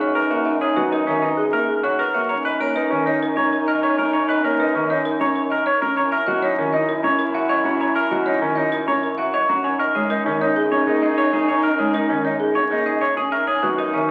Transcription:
Already playing: bass clarinet F#2, soprano saxophone D#4
0.00 clean electric guitar F#4, marimba C#5
0.15 clean electric guitar A#4, marimba B4
0.31 grand piano A#3, clean electric guitar F#4, marimba E5
0.46 marimba E5
0.61 clean electric guitar G#4, marimba C#5
0.76 grand piano F#3, clean electric guitar F#4, marimba B4
0.92 clean electric guitar D#4, marimba A#4
1.07 grand piano D#3, clean electric guitar C#4, marimba E5
1.22 clean electric guitar D#4, marimba B4
1.37 marimba G#4
1.53 grand piano A#3, clean electric guitar A#4, marimba E5
1.69 marimba G#4
1.83 clean electric guitar F#4, marimba C#5
1.99 clean electric guitar A#4, marimba B4
2.14 grand piano A#3, clean electric guitar F#4, marimba E5
2.29 bass clarinet F#2, soprano saxophone D#4, clean electric guitar C#5, marimba A#5
2.45 clean electric guitar B4, marimba D#5
2.60 grand piano A#3, clean electric guitar A#4, marimba C#5
2.75 clean electric guitar D#4, marimba B4
2.91 grand piano D#3, clean electric guitar C#4, marimba A#5
3.06 clean electric guitar D#4, marimba C#5
3.22 marimba A#4
3.37 grand piano C#4, clean electric guitar C#5, marimba A#5
3.53 marimba A#4
3.68 clean electric guitar A#4, marimba D#5
3.83 clean electric guitar C#5, marimba C#5
3.98 grand piano C#4, clean electric guitar A#4, marimba A#5
4.13 clean electric guitar C#5, marimba A#5
4.29 clean electric guitar B4, marimba D#5
4.44 grand piano A#3, clean electric guitar A#4, marimba C#5
4.60 clean electric guitar D#4, marimba B4
4.75 grand piano D#3, clean electric guitar C#4, marimba A#5
4.90 clean electric guitar D#4, marimba C#5
5.05 marimba A#4
5.20 grand piano C#4, clean electric guitar C#5, marimba A#5
5.36 marimba A#4
5.50 clean electric guitar A#4, marimba D#5
5.66 marimba C#5, clean electric guitar C#5
5.81 grand piano C#4, clean electric guitar A#4, marimba A#5
5.96 bass clarinet F#2, soprano saxophone E4, clean electric guitar C#5, marimba A#5
6.12 clean electric guitar A#4, marimba E5
6.26 grand piano F#3, clean electric guitar F#4, marimba D#5
6.42 clean electric guitar D#4, marimba C#5
6.58 grand piano D#3, clean electric guitar C#4, marimba A#5
6.73 clean electric guitar D#4, marimba D#5
6.89 marimba A#4
7.03 grand piano C#4, clean electric guitar C#5, marimba A#5
7.19 marimba A#4
7.34 clean electric guitar F#4, marimba E5
7.49 clean electric guitar C#5, marimba D#5
7.64 grand piano C#4, clean electric guitar F#4, marimba A#5
7.80 clean electric guitar C#5, marimba A#5
7.96 clean electric guitar A#4, marimba E5
8.11 grand piano F#3, clean electric guitar F#4, marimba D#5
8.26 clean electric guitar D#4, marimba C#5
8.41 grand piano D#3, clean electric guitar C#4, marimba A#5
8.55 clean electric guitar D#4, marimba D#5
8.72 marimba A#4
8.87 grand piano C#4, clean electric guitar C#5, marimba A#5
9.03 marimba A#4
9.18 clean electric guitar F#4, marimba E5
9.34 clean electric guitar C#5, marimba D#5
9.49 grand piano C#4, clean electric guitar F#4, marimba A#5
9.64 bass clarinet F#2, soprano saxophone D#4, clean electric guitar C#5, marimba G#5
9.79 clean electric guitar A#4, marimba D#5
9.95 grand piano G#3, clean electric guitar G#4, marimba C#5
10.10 clean electric guitar D#4, marimba A#4
10.26 grand piano D#3, clean electric guitar C#4, marimba G#5
10.41 clean electric guitar D#4, marimba C#5
10.56 marimba G#4
10.72 grand piano C#4, clean electric guitar C#5, marimba G#5
10.87 grand piano A#3, clean electric guitar D#4, marimba G#4
11.02 clean electric guitar G#4, marimba D#5
11.18 clean electric guitar C#5, marimba C#5
11.33 grand piano C#4, clean electric guitar G#4, marimba G#5
11.48 clean electric guitar C#5, marimba G#5
11.63 clean electric guitar A#4, marimba D#5
11.78 grand piano G#3, clean electric guitar G#4, marimba C#5
11.94 clean electric guitar D#4, marimba A#4
12.09 grand piano D#3, clean electric guitar C#4, marimba G#5
12.25 clean electric guitar D#4, marimba C#5
12.40 marimba G#4
12.55 grand piano C#4, clean electric guitar C#5, marimba G#5
12.70 grand piano A#3, clean electric guitar D#4, marimba G#4
12.86 clean electric guitar G#4, marimba D#5
13.01 clean electric guitar C#5, marimba C#5
13.17 grand piano C#4, clean electric guitar G#4, marimba G#5
13.32 bass clarinet F#2, soprano saxophone D#4, clean electric guitar A#4, marimba E5
13.47 clean electric guitar G#4, marimba C#5
13.63 grand piano F#3, clean electric guitar F#4, marimba B4
13.78 clean electric guitar D#4, marimba A#4
13.93 grand piano D#3, clean electric guitar C#4, marimba E5

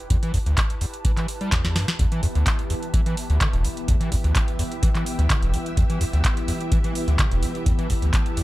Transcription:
Already playing: analog synth pad E4 G4 B4 A5
0.10 acid bass E2, kick, closed hi-hat
0.23 acid bass E3, closed hi-hat
0.34 acid bass E2, kick, open hi-hat
0.46 acid bass D2, closed hi-hat
0.57 kick, clap, closed hi-hat
0.70 closed hi-hat
0.81 acid bass E2, open hi-hat
0.94 closed hi-hat
1.05 acid bass E3, kick, closed hi-hat
1.17 acid bass E3, clap, closed hi-hat
1.28 open hi-hat
1.41 acid bass G3, closed hi-hat
1.52 acid bass E2, kick, snare, clap, closed hi-hat
1.65 acid bass E2, snare, closed hi-hat
1.76 acid bass G2, snare, open hi-hat
1.88 snare, closed hi-hat
1.99 acid bass E2, string machine E3 B3 G4 E5, kick, closed hi-hat
2.12 acid bass E3, closed hi-hat
2.23 acid bass E2, open hi-hat
2.35 acid bass D2, closed hi-hat
2.46 kick, clap, closed hi-hat
2.59 closed hi-hat
2.70 acid bass E2, open hi-hat
2.83 closed hi-hat
2.94 acid bass E3, kick, closed hi-hat
3.06 acid bass E3, closed hi-hat
3.17 open hi-hat
3.30 acid bass D2, closed hi-hat
3.41 acid bass D3, kick, clap, closed hi-hat
3.53 acid bass E1, closed hi-hat
3.64 acid bass E2, open hi-hat
3.72 analog synth pad G5
3.77 closed hi-hat
3.88 acid bass E2, kick, closed hi-hat
4.00 acid bass E3, closed hi-hat
4.12 acid bass E2, kick, open hi-hat
4.24 acid bass D2, closed hi-hat
4.35 kick, clap, closed hi-hat
4.48 closed hi-hat
4.59 acid bass E2, open hi-hat
4.72 closed hi-hat
4.83 acid bass E3, kick, closed hi-hat
4.95 acid bass E3, clap, closed hi-hat
5.06 open hi-hat
5.19 acid bass D2, closed hi-hat
5.30 acid bass D3, kick, clap, closed hi-hat
5.42 acid bass E1, closed hi-hat
5.53 acid bass E2, open hi-hat
5.66 closed hi-hat
5.77 acid bass E2, kick, closed hi-hat
5.90 acid bass E3, closed hi-hat
6.01 acid bass E2, open hi-hat
6.13 acid bass D2, closed hi-hat
6.25 kick, clap, closed hi-hat
6.37 closed hi-hat
6.48 acid bass E2, open hi-hat
6.61 closed hi-hat
6.72 acid bass E3, kick, closed hi-hat
6.84 acid bass E3, closed hi-hat
6.95 open hi-hat
7.08 acid bass D2, closed hi-hat
7.19 acid bass D3, kick, clap, closed hi-hat
7.31 acid bass E1, closed hi-hat
7.43 acid bass E2, open hi-hat
7.50 analog synth pad A5
7.55 closed hi-hat
7.66 acid bass E2, kick, closed hi-hat
7.79 acid bass E3, closed hi-hat
7.90 acid bass E2, kick, open hi-hat
8.02 acid bass D2, closed hi-hat
8.13 kick, clap, closed hi-hat
8.26 closed hi-hat
8.37 acid bass E2, open hi-hat

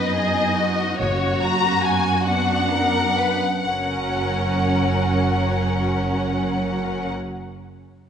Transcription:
Already playing: cello section F#2, viola section B3 D#4, violin section B4 D#5
0.16 violin section G#4
0.58 violin section F#4
0.99 double bass section F#1, cello section F#2, viola section A#3 F#4, violin section C#5
1.42 violin section A#5
1.85 violin section G#5
2.26 viola section B3 D4, violin section F#5
2.71 violin section A#4
3.17 violin section B4
3.64 double bass section F#1, cello section F#2, viola section F#3 C#4, violin section C#4 A#4 F#5

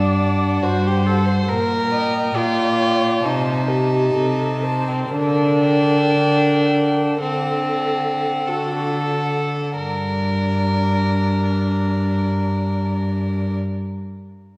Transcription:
Already playing: cello G2, violin D4 F#5, viola D5
0.20 violin F#5
0.62 cello G2, violin F#4, viola C5
0.87 violin G4
1.05 violin A4 F#5
1.28 violin C5
1.48 cello A#2, violin A#4, viola A#4
1.91 viola D#5, violin G5
2.35 cello A#2, violin F4, viola D5
2.79 violin G5
3.22 cello C3, violin D#4 A5, viola C5
3.68 viola G4, violin A5
4.15 cello C3, viola A4
4.61 viola C5, violin A5
4.87 violin C4
5.10 cello D3, violin D4, viola A#4
5.63 violin G5
6.14 cello D3
6.65 violin G5
7.19 cello D3, violin C4 F#5, viola A4
7.82 violin F#5
8.46 cello D3, viola F#4, violin A4
9.15 violin F#5
9.77 cello G2, viola D4, violin A#4 D5

